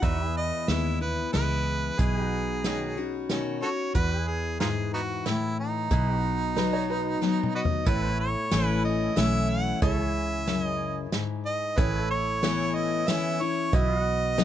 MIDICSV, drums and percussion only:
0, 0, Header, 1, 2, 480
1, 0, Start_track
1, 0, Key_signature, 4, "major"
1, 0, Tempo, 652174
1, 18, Time_signature, 3, 2, 24, 8
1, 10629, End_track
2, 0, Start_track
2, 0, Title_t, "Drums"
2, 19, Note_on_c, 9, 42, 55
2, 20, Note_on_c, 9, 36, 109
2, 93, Note_off_c, 9, 42, 0
2, 94, Note_off_c, 9, 36, 0
2, 501, Note_on_c, 9, 38, 76
2, 501, Note_on_c, 9, 42, 55
2, 575, Note_off_c, 9, 38, 0
2, 575, Note_off_c, 9, 42, 0
2, 984, Note_on_c, 9, 38, 78
2, 984, Note_on_c, 9, 42, 53
2, 1057, Note_off_c, 9, 38, 0
2, 1057, Note_off_c, 9, 42, 0
2, 1463, Note_on_c, 9, 42, 60
2, 1465, Note_on_c, 9, 36, 107
2, 1536, Note_off_c, 9, 42, 0
2, 1539, Note_off_c, 9, 36, 0
2, 1945, Note_on_c, 9, 38, 77
2, 1945, Note_on_c, 9, 42, 61
2, 2018, Note_off_c, 9, 38, 0
2, 2018, Note_off_c, 9, 42, 0
2, 2425, Note_on_c, 9, 38, 77
2, 2425, Note_on_c, 9, 42, 60
2, 2499, Note_off_c, 9, 38, 0
2, 2499, Note_off_c, 9, 42, 0
2, 2905, Note_on_c, 9, 42, 70
2, 2908, Note_on_c, 9, 36, 97
2, 2979, Note_off_c, 9, 42, 0
2, 2982, Note_off_c, 9, 36, 0
2, 3389, Note_on_c, 9, 38, 77
2, 3389, Note_on_c, 9, 42, 54
2, 3462, Note_off_c, 9, 38, 0
2, 3462, Note_off_c, 9, 42, 0
2, 3871, Note_on_c, 9, 38, 80
2, 3871, Note_on_c, 9, 42, 59
2, 3944, Note_off_c, 9, 38, 0
2, 3944, Note_off_c, 9, 42, 0
2, 4351, Note_on_c, 9, 36, 112
2, 4352, Note_on_c, 9, 42, 58
2, 4424, Note_off_c, 9, 36, 0
2, 4425, Note_off_c, 9, 42, 0
2, 4832, Note_on_c, 9, 38, 68
2, 4832, Note_on_c, 9, 42, 52
2, 4906, Note_off_c, 9, 38, 0
2, 4906, Note_off_c, 9, 42, 0
2, 5312, Note_on_c, 9, 38, 56
2, 5386, Note_off_c, 9, 38, 0
2, 5471, Note_on_c, 9, 47, 59
2, 5545, Note_off_c, 9, 47, 0
2, 5630, Note_on_c, 9, 43, 92
2, 5703, Note_off_c, 9, 43, 0
2, 5787, Note_on_c, 9, 42, 69
2, 5790, Note_on_c, 9, 36, 105
2, 5861, Note_off_c, 9, 42, 0
2, 5863, Note_off_c, 9, 36, 0
2, 6267, Note_on_c, 9, 38, 81
2, 6267, Note_on_c, 9, 42, 65
2, 6340, Note_off_c, 9, 38, 0
2, 6340, Note_off_c, 9, 42, 0
2, 6749, Note_on_c, 9, 38, 82
2, 6749, Note_on_c, 9, 42, 62
2, 6822, Note_off_c, 9, 38, 0
2, 6822, Note_off_c, 9, 42, 0
2, 7229, Note_on_c, 9, 36, 124
2, 7229, Note_on_c, 9, 42, 66
2, 7303, Note_off_c, 9, 36, 0
2, 7303, Note_off_c, 9, 42, 0
2, 7709, Note_on_c, 9, 38, 76
2, 7709, Note_on_c, 9, 42, 57
2, 7782, Note_off_c, 9, 38, 0
2, 7782, Note_off_c, 9, 42, 0
2, 8187, Note_on_c, 9, 38, 92
2, 8187, Note_on_c, 9, 42, 57
2, 8260, Note_off_c, 9, 38, 0
2, 8260, Note_off_c, 9, 42, 0
2, 8668, Note_on_c, 9, 36, 119
2, 8668, Note_on_c, 9, 42, 62
2, 8741, Note_off_c, 9, 36, 0
2, 8742, Note_off_c, 9, 42, 0
2, 9147, Note_on_c, 9, 38, 81
2, 9147, Note_on_c, 9, 42, 59
2, 9220, Note_off_c, 9, 38, 0
2, 9220, Note_off_c, 9, 42, 0
2, 9626, Note_on_c, 9, 38, 84
2, 9626, Note_on_c, 9, 42, 63
2, 9699, Note_off_c, 9, 38, 0
2, 9699, Note_off_c, 9, 42, 0
2, 10107, Note_on_c, 9, 36, 121
2, 10108, Note_on_c, 9, 42, 67
2, 10180, Note_off_c, 9, 36, 0
2, 10182, Note_off_c, 9, 42, 0
2, 10585, Note_on_c, 9, 38, 78
2, 10585, Note_on_c, 9, 42, 62
2, 10629, Note_off_c, 9, 38, 0
2, 10629, Note_off_c, 9, 42, 0
2, 10629, End_track
0, 0, End_of_file